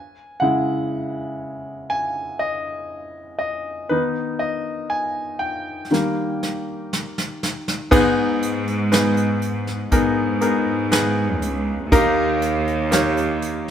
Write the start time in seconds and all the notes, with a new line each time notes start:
Already playing: G#5
0.40 C#3 G#3 E4 F#5
1.90 G#5
2.39 D#5
3.39 D#5
3.89 D#3 B3 D#4 B4
4.39 D#5
4.90 G#5
5.39 G5
5.91 D#3 G3 A#3, snare
6.43 snare
6.93 snare
7.18 snare
7.43 snare
7.68 snare
7.91 G#2 B3 D#4 G#4 B4, kick, crash
8.42 closed hi-hat
8.67 closed hi-hat
8.92 B3 D#4 G#4 B4, snare, closed hi-hat
9.17 closed hi-hat
9.42 closed hi-hat
9.67 snare
9.92 G#2 B3 D#4 G#4 A#4, kick, closed hi-hat
10.41 B3 D#4 G#4 A#4, closed hi-hat
10.91 B3 D#4 G#4 B4, snare, closed hi-hat
11.41 C#2, closed hi-hat
11.92 D#2 D#3 A#3 D#4 G4 A#4, kick, closed hi-hat
12.42 closed hi-hat
12.67 closed hi-hat
12.91 A#3 D#4 G4 C#5, snare, closed hi-hat
13.17 closed hi-hat
13.42 closed hi-hat